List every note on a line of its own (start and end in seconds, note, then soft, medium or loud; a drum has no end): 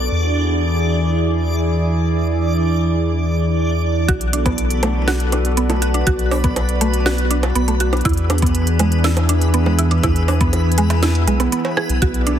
0.00 4.10 D4 medium
0.00 4.10 D5 medium
0.12 4.06 E2 medium
0.12 4.04 E3 medium
0.12 4.04 E4 medium
0.12 4.04 G#4 medium
0.12 4.04 D5 medium
4.08 6.03 B1 loud
4.08 12.39 B3 medium
4.08 8.01 F#4 medium
4.08 4.15 F#4 loud
4.08 6.05 A4 medium
4.08 12.39 B4 medium
4.08 8.01 D5 medium
4.08 kick loud
4.08 closed hi-hat medium
4.21 closed hi-hat soft
4.33 4.40 D4 medium
4.33 closed hi-hat medium
4.46 4.55 B3 medium
4.46 kick loud
4.46 closed hi-hat soft
4.46 high bongo medium
4.58 closed hi-hat medium
4.70 closed hi-hat soft
4.83 4.89 A3 loud
4.83 closed hi-hat medium
4.83 high bongo medium
5.08 5.14 F#4 loud
5.08 snare loud
5.08 open hi-hat medium
5.20 closed hi-hat soft
5.32 5.39 D4 medium
5.32 closed hi-hat loud
5.32 high bongo medium
5.45 closed hi-hat soft
5.57 5.64 B3 medium
5.57 closed hi-hat medium
5.70 5.76 A3 medium
5.70 closed hi-hat soft
5.70 high bongo medium
5.82 5.92 F#4 medium
5.82 closed hi-hat loud
5.94 6.04 D4 medium
5.94 closed hi-hat soft
6.07 7.52 B1 loud
6.07 6.13 F#4 loud
6.07 8.03 B4 medium
6.07 kick loud
6.07 closed hi-hat medium
6.19 closed hi-hat soft
6.31 6.38 D4 medium
6.31 open hi-hat medium
6.31 cowbell medium
6.44 6.54 B3 medium
6.44 kick loud
6.44 closed hi-hat soft
6.56 closed hi-hat medium
6.56 high bongo medium
6.69 closed hi-hat soft
6.81 6.88 A3 loud
6.81 closed hi-hat loud
6.94 closed hi-hat soft
7.06 7.12 F#4 loud
7.06 snare loud
7.06 high bongo medium
7.18 closed hi-hat soft
7.31 7.37 D4 medium
7.31 closed hi-hat loud
7.43 closed hi-hat soft
7.43 high bongo medium
7.55 8.02 B1 loud
7.55 7.62 B3 medium
7.55 closed hi-hat medium
7.68 7.74 A3 medium
7.68 closed hi-hat soft
7.80 7.90 F#4 medium
7.80 closed hi-hat loud
7.93 8.02 D4 medium
7.93 closed hi-hat soft
7.93 high bongo medium
7.97 closed hi-hat soft
8.01 closed hi-hat soft
8.05 10.00 E2 loud
8.05 11.98 E3 medium
8.05 10.02 D4 medium
8.05 8.12 E4 loud
8.05 11.98 G#4 medium
8.05 kick loud
8.05 closed hi-hat medium
8.09 closed hi-hat soft
8.13 closed hi-hat soft
8.17 closed hi-hat soft
8.30 8.36 D4 medium
8.30 closed hi-hat medium
8.30 high bongo medium
8.38 closed hi-hat medium
8.42 8.52 B3 medium
8.42 kick loud
8.42 closed hi-hat soft
8.46 closed hi-hat medium
8.55 closed hi-hat medium
8.67 closed hi-hat soft
8.79 8.86 G#3 loud
8.79 closed hi-hat loud
8.79 high bongo medium
8.92 closed hi-hat soft
9.04 9.11 E4 loud
9.04 snare loud
9.04 open hi-hat medium
9.17 closed hi-hat soft
9.17 high bongo medium
9.29 9.36 D4 medium
9.29 closed hi-hat medium
9.41 closed hi-hat soft
9.54 9.60 B3 medium
9.54 closed hi-hat medium
9.66 9.73 G#3 medium
9.66 high bongo medium
9.79 9.88 E4 medium
9.79 closed hi-hat medium
9.91 10.01 D4 medium
9.91 closed hi-hat soft
10.03 11.27 E2 loud
10.03 10.10 E4 loud
10.03 12.00 E4 medium
10.03 kick loud
10.03 closed hi-hat medium
10.03 high bongo medium
10.16 closed hi-hat soft
10.28 10.35 D4 medium
10.28 open hi-hat medium
10.28 cowbell medium
10.41 10.50 B3 medium
10.41 kick loud
10.41 closed hi-hat soft
10.53 closed hi-hat medium
10.53 high bongo soft
10.72 closed hi-hat soft
10.78 10.84 G#3 loud
10.78 closed hi-hat medium
10.90 closed hi-hat soft
10.90 high bongo medium
11.03 11.09 E4 loud
11.03 snare loud
11.03 closed hi-hat medium
11.15 closed hi-hat soft
11.27 11.48 B1 medium
11.27 11.34 G#3 loud
11.27 closed hi-hat medium
11.40 11.50 B3 medium
11.40 closed hi-hat soft
11.40 high bongo medium
11.52 11.59 B3 medium
11.52 closed hi-hat medium
11.65 cowbell medium
11.77 11.87 G#4 loud
11.77 high bongo medium
11.89 12.00 B1 medium
11.89 closed hi-hat soft
12.02 12.39 B1 loud
12.02 12.08 F#4 loud
12.02 12.39 F#4 medium
12.02 12.39 A4 medium
12.02 12.39 D5 medium
12.02 kick loud
12.02 closed hi-hat medium
12.14 closed hi-hat soft
12.27 12.33 D4 medium
12.27 closed hi-hat medium